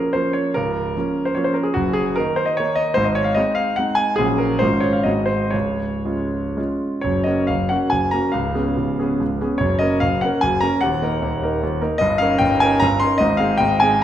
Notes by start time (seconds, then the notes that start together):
Already playing: F3 A#3 C#4 A#4
0.13 F3 A#3 C#4 C5
0.33 C#5
0.54 C#1 C#2 A#4
0.97 F3 A#3 C#4
1.25 C5
1.35 F3 A#3 C#4 C#5
1.44 C5
1.54 A#4
1.63 G#4
1.74 F#1 F#2 F#4
1.93 G#4
2.16 D#3 A#3 D#4 A#4
2.36 C5
2.46 D#5
2.57 D#3 A#3 D#4 C#5
2.75 D#5
2.94 G#1 G#2 C5
3.04 D#5
3.15 C#5
3.24 F5
3.35 G#3 C4 D#4 D#5
3.55 F5
3.76 G#3 C4 D#4 F#5
3.95 G#5
4.16 A#1 A#2 F#3 C#4 F#4 G#4
4.38 A#4
4.59 G#1 G#2 G#3 C#4 F4 C5
4.80 C#5
4.93 F5
5.03 G#1 G#2 G#3 C4 F#4 D#5
5.26 C5
5.50 C#1 C#2 C#5
6.05 G#3 C#4 F4
6.57 G#3 C#4 F4
7.01 F#1 F#2 C#5
7.24 A#3 C#4 F#4 D#5
7.47 F#1 F#2 F5
7.69 A#3 C#4 F#4 F#5
7.90 F#1 F#2 G#5
8.11 A#3 C#4 F#4 A#5
8.32 C#1 C#2 F5
8.54 B3 C#4 G#4
8.77 C#1 C#2
8.99 B3 C#4 G#4
9.20 C#1 C#2
9.41 B3 C#4 G#4
9.58 F#1 F#2 C#5
9.79 A#3 C#4 A#4 D#5
10.00 F#1 F#2 F5
10.21 A#3 C#4 A#4 F#5
10.41 F#1 F#2 G#5
10.61 A#3 C#4 A#4 A#5
10.81 D#1 D#2 F#5
11.02 A#3 D#4 A#4
11.22 D#1 D#2
11.42 A#3 D#4 A#4
11.63 D#1 D#2
11.81 A#3 D#4 A#4
11.98 G1 G2 D#5
12.18 C#4 D#4 A#4 F5
12.38 G1 G2 G5
12.60 C#4 D#4 A#4 G#5
12.80 G1 G2 A#5
13.00 C#4 D#4 A#4 C6
13.18 G#1 G#2 D#5
13.37 C4 D#4 G#4 F5
13.57 G#1 G#2 G5
13.80 C4 D#4 G#4 G#5